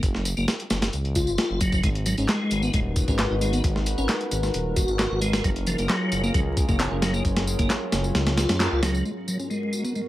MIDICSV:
0, 0, Header, 1, 5, 480
1, 0, Start_track
1, 0, Tempo, 451128
1, 32, Time_signature, 4, 2, 24, 8
1, 10729, End_track
2, 0, Start_track
2, 0, Title_t, "Ambient pad"
2, 0, Program_c, 0, 92
2, 1954, Note_on_c, 0, 56, 84
2, 1955, Note_on_c, 0, 66, 78
2, 1955, Note_on_c, 0, 70, 79
2, 1955, Note_on_c, 0, 71, 93
2, 1956, Note_on_c, 0, 63, 79
2, 5754, Note_off_c, 0, 56, 0
2, 5755, Note_off_c, 0, 63, 0
2, 5755, Note_off_c, 0, 66, 0
2, 5755, Note_off_c, 0, 71, 0
2, 5793, Note_on_c, 0, 54, 83
2, 5794, Note_on_c, 0, 65, 78
2, 5794, Note_on_c, 0, 68, 78
2, 5795, Note_on_c, 0, 61, 78
2, 9591, Note_off_c, 0, 70, 0
2, 9594, Note_off_c, 0, 54, 0
2, 9595, Note_off_c, 0, 61, 0
2, 9595, Note_off_c, 0, 65, 0
2, 9595, Note_off_c, 0, 68, 0
2, 9635, Note_on_c, 0, 44, 80
2, 9635, Note_on_c, 0, 56, 74
2, 9635, Note_on_c, 0, 66, 74
2, 9637, Note_on_c, 0, 59, 74
2, 9637, Note_on_c, 0, 70, 88
2, 10729, Note_off_c, 0, 44, 0
2, 10729, Note_off_c, 0, 56, 0
2, 10729, Note_off_c, 0, 59, 0
2, 10729, Note_off_c, 0, 66, 0
2, 10729, Note_off_c, 0, 70, 0
2, 10729, End_track
3, 0, Start_track
3, 0, Title_t, "Tonewheel organ"
3, 0, Program_c, 1, 16
3, 395, Note_on_c, 1, 58, 77
3, 493, Note_off_c, 1, 58, 0
3, 1230, Note_on_c, 1, 65, 74
3, 1699, Note_off_c, 1, 65, 0
3, 1710, Note_on_c, 1, 54, 75
3, 1939, Note_off_c, 1, 54, 0
3, 1952, Note_on_c, 1, 56, 80
3, 2015, Note_off_c, 1, 56, 0
3, 2193, Note_on_c, 1, 54, 94
3, 2297, Note_off_c, 1, 54, 0
3, 2318, Note_on_c, 1, 61, 75
3, 2415, Note_off_c, 1, 61, 0
3, 2433, Note_on_c, 1, 56, 94
3, 2785, Note_off_c, 1, 56, 0
3, 2796, Note_on_c, 1, 59, 98
3, 2894, Note_off_c, 1, 59, 0
3, 2912, Note_on_c, 1, 56, 80
3, 2975, Note_off_c, 1, 56, 0
3, 3276, Note_on_c, 1, 61, 72
3, 3374, Note_off_c, 1, 61, 0
3, 3514, Note_on_c, 1, 63, 73
3, 3574, Note_off_c, 1, 63, 0
3, 3630, Note_on_c, 1, 56, 75
3, 3749, Note_off_c, 1, 56, 0
3, 3754, Note_on_c, 1, 59, 99
3, 3852, Note_off_c, 1, 59, 0
3, 4234, Note_on_c, 1, 61, 76
3, 4333, Note_off_c, 1, 61, 0
3, 5069, Note_on_c, 1, 66, 73
3, 5539, Note_off_c, 1, 66, 0
3, 5547, Note_on_c, 1, 56, 75
3, 5778, Note_off_c, 1, 56, 0
3, 5788, Note_on_c, 1, 54, 80
3, 5853, Note_off_c, 1, 54, 0
3, 6029, Note_on_c, 1, 53, 98
3, 6135, Note_off_c, 1, 53, 0
3, 6154, Note_on_c, 1, 58, 78
3, 6252, Note_off_c, 1, 58, 0
3, 6268, Note_on_c, 1, 54, 101
3, 6622, Note_off_c, 1, 54, 0
3, 6634, Note_on_c, 1, 58, 99
3, 6732, Note_off_c, 1, 58, 0
3, 6750, Note_on_c, 1, 54, 84
3, 6814, Note_off_c, 1, 54, 0
3, 7114, Note_on_c, 1, 58, 74
3, 7213, Note_off_c, 1, 58, 0
3, 7354, Note_on_c, 1, 61, 74
3, 7414, Note_off_c, 1, 61, 0
3, 7469, Note_on_c, 1, 54, 77
3, 7589, Note_off_c, 1, 54, 0
3, 7593, Note_on_c, 1, 58, 99
3, 7692, Note_off_c, 1, 58, 0
3, 8073, Note_on_c, 1, 58, 78
3, 8172, Note_off_c, 1, 58, 0
3, 8910, Note_on_c, 1, 65, 78
3, 9379, Note_off_c, 1, 65, 0
3, 9390, Note_on_c, 1, 54, 75
3, 9620, Note_off_c, 1, 54, 0
3, 9630, Note_on_c, 1, 56, 72
3, 9694, Note_off_c, 1, 56, 0
3, 9871, Note_on_c, 1, 54, 91
3, 9976, Note_off_c, 1, 54, 0
3, 9995, Note_on_c, 1, 61, 71
3, 10093, Note_off_c, 1, 61, 0
3, 10110, Note_on_c, 1, 56, 92
3, 10463, Note_off_c, 1, 56, 0
3, 10475, Note_on_c, 1, 59, 89
3, 10573, Note_off_c, 1, 59, 0
3, 10592, Note_on_c, 1, 56, 73
3, 10655, Note_off_c, 1, 56, 0
3, 10729, End_track
4, 0, Start_track
4, 0, Title_t, "Detuned saw bass"
4, 0, Program_c, 2, 39
4, 31, Note_on_c, 2, 30, 100
4, 362, Note_off_c, 2, 30, 0
4, 395, Note_on_c, 2, 30, 100
4, 492, Note_off_c, 2, 30, 0
4, 748, Note_on_c, 2, 30, 86
4, 951, Note_off_c, 2, 30, 0
4, 992, Note_on_c, 2, 37, 85
4, 1357, Note_on_c, 2, 30, 96
4, 1373, Note_off_c, 2, 37, 0
4, 1452, Note_off_c, 2, 30, 0
4, 1596, Note_on_c, 2, 30, 92
4, 1920, Note_off_c, 2, 30, 0
4, 1953, Note_on_c, 2, 32, 98
4, 2283, Note_off_c, 2, 32, 0
4, 2317, Note_on_c, 2, 32, 100
4, 2413, Note_off_c, 2, 32, 0
4, 2673, Note_on_c, 2, 32, 87
4, 2873, Note_off_c, 2, 32, 0
4, 2913, Note_on_c, 2, 27, 84
4, 3243, Note_off_c, 2, 27, 0
4, 3277, Note_on_c, 2, 32, 101
4, 3474, Note_off_c, 2, 32, 0
4, 3516, Note_on_c, 2, 32, 94
4, 3840, Note_off_c, 2, 32, 0
4, 3872, Note_on_c, 2, 32, 102
4, 4203, Note_off_c, 2, 32, 0
4, 4237, Note_on_c, 2, 32, 100
4, 4332, Note_off_c, 2, 32, 0
4, 4593, Note_on_c, 2, 32, 87
4, 4793, Note_off_c, 2, 32, 0
4, 4834, Note_on_c, 2, 27, 85
4, 5163, Note_off_c, 2, 27, 0
4, 5198, Note_on_c, 2, 32, 103
4, 5394, Note_off_c, 2, 32, 0
4, 5438, Note_on_c, 2, 32, 95
4, 5761, Note_off_c, 2, 32, 0
4, 5792, Note_on_c, 2, 30, 101
4, 6122, Note_off_c, 2, 30, 0
4, 6157, Note_on_c, 2, 30, 101
4, 6252, Note_off_c, 2, 30, 0
4, 6511, Note_on_c, 2, 30, 89
4, 6712, Note_off_c, 2, 30, 0
4, 6750, Note_on_c, 2, 37, 84
4, 7082, Note_off_c, 2, 37, 0
4, 7115, Note_on_c, 2, 30, 102
4, 7313, Note_off_c, 2, 30, 0
4, 7355, Note_on_c, 2, 30, 98
4, 7679, Note_off_c, 2, 30, 0
4, 7711, Note_on_c, 2, 30, 99
4, 8042, Note_off_c, 2, 30, 0
4, 8075, Note_on_c, 2, 30, 104
4, 8171, Note_off_c, 2, 30, 0
4, 8433, Note_on_c, 2, 30, 89
4, 8633, Note_off_c, 2, 30, 0
4, 8672, Note_on_c, 2, 37, 84
4, 9002, Note_off_c, 2, 37, 0
4, 9037, Note_on_c, 2, 42, 80
4, 9234, Note_off_c, 2, 42, 0
4, 9275, Note_on_c, 2, 37, 92
4, 9599, Note_off_c, 2, 37, 0
4, 10729, End_track
5, 0, Start_track
5, 0, Title_t, "Drums"
5, 28, Note_on_c, 9, 54, 29
5, 30, Note_on_c, 9, 36, 108
5, 30, Note_on_c, 9, 42, 86
5, 134, Note_off_c, 9, 54, 0
5, 136, Note_off_c, 9, 36, 0
5, 136, Note_off_c, 9, 42, 0
5, 155, Note_on_c, 9, 38, 46
5, 261, Note_off_c, 9, 38, 0
5, 268, Note_on_c, 9, 54, 73
5, 270, Note_on_c, 9, 42, 69
5, 374, Note_off_c, 9, 54, 0
5, 376, Note_off_c, 9, 42, 0
5, 393, Note_on_c, 9, 54, 40
5, 499, Note_off_c, 9, 54, 0
5, 507, Note_on_c, 9, 54, 31
5, 511, Note_on_c, 9, 38, 112
5, 511, Note_on_c, 9, 42, 85
5, 614, Note_off_c, 9, 54, 0
5, 617, Note_off_c, 9, 38, 0
5, 617, Note_off_c, 9, 42, 0
5, 636, Note_on_c, 9, 42, 43
5, 743, Note_off_c, 9, 42, 0
5, 746, Note_on_c, 9, 54, 72
5, 750, Note_on_c, 9, 38, 102
5, 750, Note_on_c, 9, 42, 78
5, 853, Note_off_c, 9, 54, 0
5, 857, Note_off_c, 9, 38, 0
5, 857, Note_off_c, 9, 42, 0
5, 872, Note_on_c, 9, 54, 40
5, 876, Note_on_c, 9, 38, 100
5, 876, Note_on_c, 9, 42, 77
5, 978, Note_off_c, 9, 54, 0
5, 982, Note_off_c, 9, 38, 0
5, 982, Note_off_c, 9, 42, 0
5, 987, Note_on_c, 9, 54, 30
5, 992, Note_on_c, 9, 42, 58
5, 1094, Note_off_c, 9, 54, 0
5, 1099, Note_off_c, 9, 42, 0
5, 1117, Note_on_c, 9, 42, 39
5, 1223, Note_off_c, 9, 42, 0
5, 1226, Note_on_c, 9, 54, 72
5, 1232, Note_on_c, 9, 36, 93
5, 1232, Note_on_c, 9, 42, 68
5, 1333, Note_off_c, 9, 54, 0
5, 1338, Note_off_c, 9, 36, 0
5, 1339, Note_off_c, 9, 42, 0
5, 1352, Note_on_c, 9, 54, 40
5, 1458, Note_off_c, 9, 54, 0
5, 1468, Note_on_c, 9, 54, 30
5, 1472, Note_on_c, 9, 38, 113
5, 1472, Note_on_c, 9, 42, 84
5, 1574, Note_off_c, 9, 54, 0
5, 1578, Note_off_c, 9, 38, 0
5, 1578, Note_off_c, 9, 42, 0
5, 1707, Note_on_c, 9, 54, 69
5, 1712, Note_on_c, 9, 36, 92
5, 1712, Note_on_c, 9, 42, 67
5, 1814, Note_off_c, 9, 54, 0
5, 1818, Note_off_c, 9, 36, 0
5, 1819, Note_off_c, 9, 42, 0
5, 1832, Note_on_c, 9, 54, 42
5, 1836, Note_on_c, 9, 36, 94
5, 1939, Note_off_c, 9, 54, 0
5, 1943, Note_off_c, 9, 36, 0
5, 1947, Note_on_c, 9, 54, 29
5, 1952, Note_on_c, 9, 36, 109
5, 1952, Note_on_c, 9, 42, 87
5, 2054, Note_off_c, 9, 54, 0
5, 2059, Note_off_c, 9, 36, 0
5, 2059, Note_off_c, 9, 42, 0
5, 2078, Note_on_c, 9, 42, 43
5, 2185, Note_off_c, 9, 42, 0
5, 2187, Note_on_c, 9, 54, 71
5, 2192, Note_on_c, 9, 42, 69
5, 2294, Note_off_c, 9, 54, 0
5, 2298, Note_off_c, 9, 42, 0
5, 2313, Note_on_c, 9, 54, 39
5, 2317, Note_on_c, 9, 42, 42
5, 2419, Note_off_c, 9, 54, 0
5, 2424, Note_off_c, 9, 42, 0
5, 2429, Note_on_c, 9, 39, 102
5, 2429, Note_on_c, 9, 54, 29
5, 2433, Note_on_c, 9, 38, 109
5, 2433, Note_on_c, 9, 42, 88
5, 2535, Note_off_c, 9, 39, 0
5, 2535, Note_off_c, 9, 54, 0
5, 2540, Note_off_c, 9, 38, 0
5, 2540, Note_off_c, 9, 42, 0
5, 2668, Note_on_c, 9, 54, 70
5, 2673, Note_on_c, 9, 42, 66
5, 2774, Note_off_c, 9, 54, 0
5, 2780, Note_off_c, 9, 42, 0
5, 2792, Note_on_c, 9, 54, 40
5, 2899, Note_off_c, 9, 54, 0
5, 2907, Note_on_c, 9, 54, 29
5, 2913, Note_on_c, 9, 36, 106
5, 2913, Note_on_c, 9, 42, 86
5, 3014, Note_off_c, 9, 54, 0
5, 3019, Note_off_c, 9, 36, 0
5, 3019, Note_off_c, 9, 42, 0
5, 3149, Note_on_c, 9, 54, 70
5, 3152, Note_on_c, 9, 36, 92
5, 3152, Note_on_c, 9, 42, 65
5, 3255, Note_off_c, 9, 54, 0
5, 3258, Note_off_c, 9, 36, 0
5, 3258, Note_off_c, 9, 42, 0
5, 3275, Note_on_c, 9, 54, 39
5, 3277, Note_on_c, 9, 36, 92
5, 3381, Note_off_c, 9, 54, 0
5, 3383, Note_off_c, 9, 36, 0
5, 3390, Note_on_c, 9, 39, 102
5, 3390, Note_on_c, 9, 54, 29
5, 3392, Note_on_c, 9, 38, 113
5, 3392, Note_on_c, 9, 42, 86
5, 3497, Note_off_c, 9, 39, 0
5, 3497, Note_off_c, 9, 54, 0
5, 3498, Note_off_c, 9, 38, 0
5, 3498, Note_off_c, 9, 42, 0
5, 3631, Note_on_c, 9, 54, 68
5, 3634, Note_on_c, 9, 42, 68
5, 3737, Note_off_c, 9, 54, 0
5, 3741, Note_off_c, 9, 42, 0
5, 3754, Note_on_c, 9, 54, 40
5, 3760, Note_on_c, 9, 42, 45
5, 3861, Note_off_c, 9, 54, 0
5, 3866, Note_off_c, 9, 42, 0
5, 3870, Note_on_c, 9, 54, 29
5, 3873, Note_on_c, 9, 36, 107
5, 3875, Note_on_c, 9, 42, 85
5, 3976, Note_off_c, 9, 54, 0
5, 3979, Note_off_c, 9, 36, 0
5, 3981, Note_off_c, 9, 42, 0
5, 3999, Note_on_c, 9, 38, 47
5, 4105, Note_off_c, 9, 38, 0
5, 4108, Note_on_c, 9, 54, 71
5, 4112, Note_on_c, 9, 42, 70
5, 4215, Note_off_c, 9, 54, 0
5, 4219, Note_off_c, 9, 42, 0
5, 4233, Note_on_c, 9, 54, 39
5, 4339, Note_off_c, 9, 54, 0
5, 4350, Note_on_c, 9, 38, 112
5, 4350, Note_on_c, 9, 39, 98
5, 4350, Note_on_c, 9, 42, 84
5, 4350, Note_on_c, 9, 54, 29
5, 4456, Note_off_c, 9, 39, 0
5, 4456, Note_off_c, 9, 54, 0
5, 4457, Note_off_c, 9, 38, 0
5, 4457, Note_off_c, 9, 42, 0
5, 4477, Note_on_c, 9, 42, 44
5, 4583, Note_off_c, 9, 42, 0
5, 4589, Note_on_c, 9, 54, 69
5, 4591, Note_on_c, 9, 42, 65
5, 4696, Note_off_c, 9, 54, 0
5, 4697, Note_off_c, 9, 42, 0
5, 4714, Note_on_c, 9, 54, 40
5, 4717, Note_on_c, 9, 38, 43
5, 4820, Note_off_c, 9, 54, 0
5, 4823, Note_off_c, 9, 38, 0
5, 4829, Note_on_c, 9, 54, 29
5, 4832, Note_on_c, 9, 42, 85
5, 4935, Note_off_c, 9, 54, 0
5, 4938, Note_off_c, 9, 42, 0
5, 5068, Note_on_c, 9, 54, 71
5, 5070, Note_on_c, 9, 42, 66
5, 5071, Note_on_c, 9, 36, 92
5, 5175, Note_off_c, 9, 54, 0
5, 5177, Note_off_c, 9, 36, 0
5, 5177, Note_off_c, 9, 42, 0
5, 5193, Note_on_c, 9, 54, 39
5, 5300, Note_off_c, 9, 54, 0
5, 5310, Note_on_c, 9, 39, 99
5, 5310, Note_on_c, 9, 54, 30
5, 5311, Note_on_c, 9, 38, 102
5, 5311, Note_on_c, 9, 42, 75
5, 5417, Note_off_c, 9, 38, 0
5, 5417, Note_off_c, 9, 39, 0
5, 5417, Note_off_c, 9, 42, 0
5, 5417, Note_off_c, 9, 54, 0
5, 5548, Note_on_c, 9, 54, 70
5, 5550, Note_on_c, 9, 42, 61
5, 5654, Note_off_c, 9, 54, 0
5, 5657, Note_off_c, 9, 42, 0
5, 5673, Note_on_c, 9, 54, 41
5, 5675, Note_on_c, 9, 38, 105
5, 5675, Note_on_c, 9, 42, 81
5, 5779, Note_off_c, 9, 54, 0
5, 5781, Note_off_c, 9, 38, 0
5, 5781, Note_off_c, 9, 42, 0
5, 5790, Note_on_c, 9, 54, 30
5, 5791, Note_on_c, 9, 36, 108
5, 5791, Note_on_c, 9, 42, 86
5, 5896, Note_off_c, 9, 54, 0
5, 5898, Note_off_c, 9, 36, 0
5, 5898, Note_off_c, 9, 42, 0
5, 5915, Note_on_c, 9, 42, 43
5, 6022, Note_off_c, 9, 42, 0
5, 6028, Note_on_c, 9, 54, 74
5, 6033, Note_on_c, 9, 42, 70
5, 6134, Note_off_c, 9, 54, 0
5, 6139, Note_off_c, 9, 42, 0
5, 6153, Note_on_c, 9, 54, 41
5, 6156, Note_on_c, 9, 42, 42
5, 6259, Note_off_c, 9, 54, 0
5, 6263, Note_off_c, 9, 42, 0
5, 6268, Note_on_c, 9, 39, 100
5, 6268, Note_on_c, 9, 54, 30
5, 6272, Note_on_c, 9, 38, 118
5, 6272, Note_on_c, 9, 42, 87
5, 6375, Note_off_c, 9, 39, 0
5, 6375, Note_off_c, 9, 54, 0
5, 6378, Note_off_c, 9, 38, 0
5, 6378, Note_off_c, 9, 42, 0
5, 6509, Note_on_c, 9, 54, 72
5, 6511, Note_on_c, 9, 42, 68
5, 6616, Note_off_c, 9, 54, 0
5, 6617, Note_off_c, 9, 42, 0
5, 6635, Note_on_c, 9, 54, 41
5, 6741, Note_off_c, 9, 54, 0
5, 6750, Note_on_c, 9, 42, 88
5, 6750, Note_on_c, 9, 54, 31
5, 6751, Note_on_c, 9, 36, 110
5, 6856, Note_off_c, 9, 42, 0
5, 6857, Note_off_c, 9, 36, 0
5, 6857, Note_off_c, 9, 54, 0
5, 6990, Note_on_c, 9, 42, 68
5, 6990, Note_on_c, 9, 54, 74
5, 6991, Note_on_c, 9, 36, 93
5, 7096, Note_off_c, 9, 42, 0
5, 7096, Note_off_c, 9, 54, 0
5, 7097, Note_off_c, 9, 36, 0
5, 7114, Note_on_c, 9, 54, 39
5, 7115, Note_on_c, 9, 36, 94
5, 7221, Note_off_c, 9, 54, 0
5, 7222, Note_off_c, 9, 36, 0
5, 7231, Note_on_c, 9, 38, 116
5, 7231, Note_on_c, 9, 42, 88
5, 7232, Note_on_c, 9, 39, 102
5, 7232, Note_on_c, 9, 54, 30
5, 7337, Note_off_c, 9, 38, 0
5, 7337, Note_off_c, 9, 42, 0
5, 7339, Note_off_c, 9, 39, 0
5, 7339, Note_off_c, 9, 54, 0
5, 7471, Note_on_c, 9, 54, 72
5, 7472, Note_on_c, 9, 38, 105
5, 7472, Note_on_c, 9, 42, 79
5, 7577, Note_off_c, 9, 54, 0
5, 7578, Note_off_c, 9, 38, 0
5, 7578, Note_off_c, 9, 42, 0
5, 7595, Note_on_c, 9, 54, 41
5, 7701, Note_off_c, 9, 54, 0
5, 7711, Note_on_c, 9, 36, 84
5, 7711, Note_on_c, 9, 42, 60
5, 7712, Note_on_c, 9, 54, 31
5, 7817, Note_off_c, 9, 42, 0
5, 7818, Note_off_c, 9, 36, 0
5, 7818, Note_off_c, 9, 54, 0
5, 7836, Note_on_c, 9, 38, 100
5, 7836, Note_on_c, 9, 42, 78
5, 7942, Note_off_c, 9, 38, 0
5, 7942, Note_off_c, 9, 42, 0
5, 7951, Note_on_c, 9, 54, 76
5, 8058, Note_off_c, 9, 54, 0
5, 8075, Note_on_c, 9, 42, 61
5, 8075, Note_on_c, 9, 54, 41
5, 8076, Note_on_c, 9, 36, 84
5, 8182, Note_off_c, 9, 36, 0
5, 8182, Note_off_c, 9, 42, 0
5, 8182, Note_off_c, 9, 54, 0
5, 8190, Note_on_c, 9, 38, 103
5, 8190, Note_on_c, 9, 42, 77
5, 8192, Note_on_c, 9, 39, 101
5, 8192, Note_on_c, 9, 54, 32
5, 8297, Note_off_c, 9, 38, 0
5, 8297, Note_off_c, 9, 42, 0
5, 8298, Note_off_c, 9, 39, 0
5, 8298, Note_off_c, 9, 54, 0
5, 8431, Note_on_c, 9, 38, 99
5, 8431, Note_on_c, 9, 42, 76
5, 8433, Note_on_c, 9, 54, 76
5, 8537, Note_off_c, 9, 38, 0
5, 8537, Note_off_c, 9, 42, 0
5, 8539, Note_off_c, 9, 54, 0
5, 8556, Note_on_c, 9, 54, 42
5, 8662, Note_off_c, 9, 54, 0
5, 8671, Note_on_c, 9, 38, 103
5, 8671, Note_on_c, 9, 42, 78
5, 8671, Note_on_c, 9, 54, 32
5, 8777, Note_off_c, 9, 38, 0
5, 8777, Note_off_c, 9, 42, 0
5, 8777, Note_off_c, 9, 54, 0
5, 8796, Note_on_c, 9, 38, 101
5, 8796, Note_on_c, 9, 42, 75
5, 8902, Note_off_c, 9, 38, 0
5, 8902, Note_off_c, 9, 42, 0
5, 8911, Note_on_c, 9, 38, 103
5, 8911, Note_on_c, 9, 42, 80
5, 8911, Note_on_c, 9, 54, 76
5, 9017, Note_off_c, 9, 54, 0
5, 9018, Note_off_c, 9, 38, 0
5, 9018, Note_off_c, 9, 42, 0
5, 9036, Note_on_c, 9, 54, 41
5, 9037, Note_on_c, 9, 38, 100
5, 9037, Note_on_c, 9, 42, 77
5, 9142, Note_off_c, 9, 54, 0
5, 9143, Note_off_c, 9, 38, 0
5, 9143, Note_off_c, 9, 42, 0
5, 9151, Note_on_c, 9, 38, 115
5, 9151, Note_on_c, 9, 42, 84
5, 9153, Note_on_c, 9, 39, 99
5, 9153, Note_on_c, 9, 54, 31
5, 9257, Note_off_c, 9, 38, 0
5, 9257, Note_off_c, 9, 42, 0
5, 9259, Note_off_c, 9, 39, 0
5, 9259, Note_off_c, 9, 54, 0
5, 9391, Note_on_c, 9, 38, 106
5, 9391, Note_on_c, 9, 42, 81
5, 9394, Note_on_c, 9, 54, 75
5, 9498, Note_off_c, 9, 38, 0
5, 9498, Note_off_c, 9, 42, 0
5, 9500, Note_off_c, 9, 54, 0
5, 9517, Note_on_c, 9, 54, 43
5, 9624, Note_off_c, 9, 54, 0
5, 9632, Note_on_c, 9, 54, 30
5, 9738, Note_off_c, 9, 54, 0
5, 9871, Note_on_c, 9, 54, 71
5, 9977, Note_off_c, 9, 54, 0
5, 9996, Note_on_c, 9, 54, 40
5, 10102, Note_off_c, 9, 54, 0
5, 10112, Note_on_c, 9, 54, 30
5, 10219, Note_off_c, 9, 54, 0
5, 10350, Note_on_c, 9, 54, 71
5, 10457, Note_off_c, 9, 54, 0
5, 10475, Note_on_c, 9, 54, 41
5, 10581, Note_off_c, 9, 54, 0
5, 10591, Note_on_c, 9, 54, 30
5, 10697, Note_off_c, 9, 54, 0
5, 10729, End_track
0, 0, End_of_file